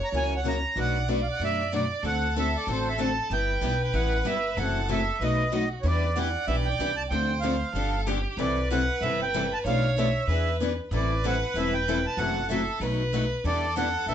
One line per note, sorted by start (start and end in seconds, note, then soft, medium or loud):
0.00 0.64 C#5 loud
0.04 0.09 A#5 loud
0.12 0.64 C#2 medium
0.12 0.33 C#3 medium
0.12 0.33 E3 medium
0.12 0.33 F#3 medium
0.12 0.33 A#3 medium
0.12 0.33 C#4 medium
0.12 0.33 E4 medium
0.12 0.34 F#4 medium
0.12 0.33 A#4 medium
0.17 0.34 G#5 loud
0.36 0.48 F#5 medium
0.44 0.55 C#3 medium
0.44 0.56 E3 medium
0.44 0.56 F#3 medium
0.44 0.56 A#3 medium
0.44 0.56 C#4 medium
0.44 0.56 E4 medium
0.44 0.56 F#4 medium
0.44 0.56 A#4 medium
0.48 0.79 A#5 medium
0.76 1.27 B1 medium
0.76 0.96 B2 medium
0.76 0.96 F#3 medium
0.76 0.96 A3 medium
0.76 0.96 D4 medium
0.76 0.97 F#4 medium
0.76 0.97 B4 medium
0.76 2.04 D5 loud
0.80 1.08 F#5 medium
1.08 1.19 B2 medium
1.08 1.19 F#3 medium
1.08 1.19 A3 medium
1.08 1.19 D4 medium
1.08 1.19 F#4 medium
1.08 1.19 B4 medium
1.23 1.27 F5 medium
1.32 1.43 F#5 medium
1.40 1.91 F#2 medium
1.40 1.60 B2 medium
1.40 1.60 F#3 medium
1.40 1.60 A3 medium
1.40 1.60 D4 medium
1.40 1.61 F#4 medium
1.40 1.61 B4 medium
1.44 1.72 E5 medium
1.72 1.83 B2 medium
1.72 1.83 F#3 medium
1.72 1.83 A3 medium
1.72 1.83 D4 medium
1.72 1.83 F#4 medium
1.72 1.83 B4 medium
1.72 2.03 D5 medium
2.03 2.54 D2 medium
2.03 2.24 D3 medium
2.03 2.24 A3 medium
2.03 2.24 C4 medium
2.03 2.24 F#4 medium
2.03 3.30 A4 loud
2.03 2.24 A4 medium
2.07 2.35 F#5 loud
2.36 2.46 D3 medium
2.36 2.47 A3 medium
2.36 2.47 C4 medium
2.36 2.47 F#4 medium
2.36 2.47 A4 medium
2.36 2.57 E5 medium
2.57 2.68 D5 medium
2.67 3.18 A1 medium
2.67 2.87 D3 medium
2.67 2.87 A3 medium
2.67 2.88 C4 medium
2.67 2.88 F#4 medium
2.67 2.88 A4 medium
2.71 2.88 C5 medium
2.89 3.00 E5 medium
2.99 3.10 D3 medium
2.99 3.10 A3 medium
2.99 3.10 C4 medium
2.99 3.10 F#4 medium
2.99 3.10 A4 medium
2.99 3.32 A5 medium
3.30 3.56 G1 medium
3.30 3.51 G3 medium
3.30 3.50 B3 medium
3.30 3.51 E4 medium
3.30 3.51 G4 medium
3.30 4.58 B4 loud
3.30 3.82 G5 loud
3.61 3.89 B1 medium
3.61 3.73 G3 medium
3.61 3.73 B3 medium
3.61 3.73 E4 medium
3.61 3.74 G4 medium
3.83 3.96 G5 medium
3.93 4.21 A1 medium
3.93 4.13 G3 medium
3.93 4.13 B3 medium
3.93 4.14 E4 medium
3.93 4.14 G4 medium
3.93 4.27 F#5 medium
4.25 4.52 G1 medium
4.25 4.36 G3 medium
4.25 4.36 B3 medium
4.25 4.36 E4 medium
4.25 4.36 G4 medium
4.25 4.59 E5 medium
4.57 5.08 F#1 medium
4.57 4.77 C3 medium
4.57 4.77 E3 medium
4.57 4.77 F#3 medium
4.57 4.77 A3 medium
4.57 4.77 C4 medium
4.57 4.77 E4 medium
4.57 4.78 F#4 medium
4.57 5.20 A4 loud
4.57 4.78 A4 medium
4.57 4.88 F#5 medium
4.88 5.00 C3 medium
4.88 5.00 E3 medium
4.88 5.00 F#3 medium
4.88 5.00 A3 medium
4.88 5.00 C4 medium
4.88 5.00 E4 loud
4.88 5.00 F#4 medium
4.88 5.00 A4 medium
4.88 5.23 E5 medium
5.20 5.71 B1 medium
5.20 5.41 B2 medium
5.20 5.41 F#3 medium
5.20 5.41 A3 medium
5.20 5.41 D#4 medium
5.20 5.41 F#4 medium
5.20 5.55 B4 medium
5.20 5.42 B4 medium
5.20 5.69 D#5 medium
5.52 5.63 B2 medium
5.52 5.63 F#3 medium
5.52 5.63 A3 medium
5.52 5.63 D#4 medium
5.52 5.64 F#4 medium
5.52 5.85 F#4 medium
5.52 5.64 B4 medium
5.82 6.35 E2 loud
5.82 6.03 E3 medium
5.82 6.04 G3 medium
5.82 6.04 D4 medium
5.82 6.04 E4 medium
5.82 6.04 B4 medium
5.82 6.15 B4 medium
5.82 5.86 C#5 medium
5.86 6.05 B3 medium
5.86 6.05 G4 medium
5.86 6.18 D5 medium
6.16 6.27 E3 medium
6.16 6.27 G3 medium
6.16 6.27 B3 medium
6.16 6.27 D4 medium
6.16 6.27 E4 medium
6.16 6.28 G4 loud
6.16 6.27 B4 loud
6.16 7.08 D5 loud
6.16 6.46 F#5 medium
6.47 6.75 B1 medium
6.47 6.67 E3 medium
6.47 6.67 G3 medium
6.47 6.68 B3 medium
6.47 6.68 D4 medium
6.47 6.68 E4 medium
6.47 6.68 G4 medium
6.47 6.68 B4 medium
6.47 6.56 E5 medium
6.65 6.95 G5 loud
6.79 7.06 C2 medium
6.79 6.90 E3 medium
6.79 6.91 G3 medium
6.79 6.90 B3 medium
6.79 6.90 D4 medium
6.79 6.91 E4 medium
6.79 6.91 G4 loud
6.79 6.91 B4 medium
6.96 7.03 A5 loud
7.10 7.62 D2 loud
7.10 7.31 D3 medium
7.10 7.32 F3 medium
7.10 7.31 A3 medium
7.10 7.32 C4 medium
7.10 7.32 D4 medium
7.10 7.31 F4 medium
7.10 7.32 A4 medium
7.10 7.71 C5 medium
7.10 7.40 G5 medium
7.40 7.53 D3 medium
7.40 7.54 F3 medium
7.40 7.54 A3 medium
7.40 7.54 C4 medium
7.40 7.54 D4 medium
7.40 7.54 A4 medium
7.40 8.01 F5 medium
7.44 7.54 F4 medium
7.73 8.25 G1 medium
7.73 7.94 D3 medium
7.73 7.94 F3 medium
7.73 7.94 B3 medium
7.73 7.95 D4 medium
7.73 7.95 G4 medium
7.73 8.08 A4 loud
8.07 8.17 D3 medium
8.07 8.18 F3 medium
8.07 8.18 B3 medium
8.07 8.18 D4 medium
8.07 8.39 G4 medium
8.07 8.17 G4 medium
8.37 8.88 C2 loud
8.37 8.58 C3 medium
8.37 8.58 E3 medium
8.37 8.58 G3 medium
8.37 8.58 C4 medium
8.37 8.58 E4 medium
8.37 8.58 A4 medium
8.37 9.66 B4 loud
8.37 8.69 D5 medium
8.70 8.81 C3 medium
8.70 8.81 E3 medium
8.70 8.81 G3 medium
8.70 8.81 C4 loud
8.70 8.81 E4 medium
8.70 8.81 A4 medium
8.70 9.03 F#5 loud
9.01 9.52 G1 medium
9.01 9.21 C3 medium
9.01 9.21 E3 medium
9.01 9.21 G3 medium
9.01 9.22 C4 medium
9.01 9.22 E4 medium
9.01 9.22 A4 medium
9.01 9.21 E5 medium
9.22 9.54 G5 loud
9.34 9.44 C3 medium
9.34 9.44 E3 medium
9.34 9.44 G3 medium
9.34 9.44 C4 medium
9.34 9.44 E4 loud
9.34 9.44 A4 loud
9.53 9.59 A5 loud
9.64 10.15 B1 loud
9.64 9.85 B2 medium
9.64 9.85 F3 medium
9.64 9.85 A3 medium
9.64 9.85 D4 medium
9.64 9.85 A4 medium
9.64 9.85 B4 medium
9.64 10.27 C#5 loud
9.64 9.95 F5 loud
9.96 10.07 B2 medium
9.96 10.07 F3 medium
9.96 10.08 A3 loud
9.96 10.08 D4 medium
9.96 10.08 A4 loud
9.96 10.08 B4 medium
9.96 10.57 E5 medium
10.27 10.78 E2 loud
10.27 10.48 E3 medium
10.27 10.48 B3 medium
10.27 10.48 D4 medium
10.27 10.48 G#4 medium
10.27 10.75 B4 medium
10.27 10.48 B4 medium
10.60 10.71 E3 medium
10.60 10.71 B3 medium
10.60 10.71 D4 medium
10.60 10.71 G#4 medium
10.60 10.71 B4 medium
10.91 11.42 A1 loud
10.91 11.11 E3 medium
10.91 11.11 G3 medium
10.91 11.11 C4 medium
10.91 11.12 E4 medium
10.91 11.12 A4 medium
10.91 12.20 B4 loud
10.95 11.26 D5 medium
11.24 11.34 E3 medium
11.24 11.34 G3 medium
11.24 11.34 C4 medium
11.24 11.34 E4 medium
11.24 11.34 A4 loud
11.24 11.57 F#5 medium
11.54 12.05 E1 medium
11.54 11.75 E3 medium
11.54 11.75 G3 medium
11.54 11.75 C4 medium
11.54 11.75 E4 medium
11.54 11.75 A4 medium
11.54 11.74 E5 medium
11.73 12.06 G5 loud
11.88 11.98 E3 medium
11.88 11.98 G3 medium
11.88 11.98 C4 medium
11.88 11.98 E4 medium
11.88 11.98 A4 medium
12.06 12.19 A5 loud
12.17 12.68 F#1 loud
12.17 12.38 C3 medium
12.17 12.38 E3 medium
12.17 12.37 F#3 medium
12.17 12.38 A3 medium
12.17 12.37 C4 medium
12.17 12.38 E4 medium
12.17 12.38 F#4 medium
12.17 12.83 A4 medium
12.17 12.38 A4 medium
12.17 12.47 F#5 loud
12.49 12.60 C3 medium
12.49 12.61 E3 loud
12.49 12.60 F#3 medium
12.49 12.61 A3 medium
12.49 12.60 C4 medium
12.49 12.60 E4 medium
12.49 12.61 F#4 loud
12.49 12.60 A4 medium
12.49 12.79 E5 medium
12.80 13.31 B1 medium
12.80 13.00 B2 medium
12.80 13.00 F#3 medium
12.80 13.01 A3 medium
12.80 13.01 D#4 medium
12.80 13.01 F#4 medium
12.80 13.47 B4 loud
12.80 13.01 B4 medium
13.13 13.23 B2 medium
13.13 13.23 F#3 medium
13.13 13.23 A3 medium
13.13 13.24 D#4 medium
13.13 13.24 F#4 medium
13.13 13.24 B4 medium
13.44 13.95 E2 medium
13.44 13.64 E3 medium
13.44 13.64 G3 medium
13.44 13.65 B3 medium
13.44 13.64 D4 medium
13.44 13.64 E4 medium
13.44 13.65 G4 medium
13.44 14.14 A4 loud
13.44 13.65 B4 medium
13.44 13.75 D5 loud
13.76 13.86 E3 loud
13.76 13.86 G3 medium
13.76 13.87 B3 loud
13.76 13.87 D4 medium
13.76 13.87 E4 loud
13.76 13.88 G4 medium
13.76 13.87 B4 medium
13.76 14.06 F#5 medium
14.06 14.14 B1 medium
14.06 14.14 E3 medium
14.06 14.14 G3 medium
14.06 14.14 B3 medium
14.06 14.14 D4 medium
14.06 14.14 E4 medium
14.06 14.14 B4 medium
14.06 14.14 E5 medium
14.10 14.14 G4 medium